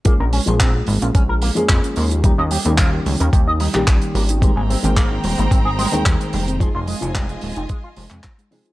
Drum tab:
HH |x-oxx-oxx-oxxxox|x-oxx-oxx-oxxxox|x-oxx-oxx-oxxxox|x-oxxxoxx-oxxxox|
CP |----x-------x---|----x------xx---|----x-------x---|----x------xx---|
BD |o---o---o---o---|o---o---o---o---|o---o---o---o---|o---o---o---o---|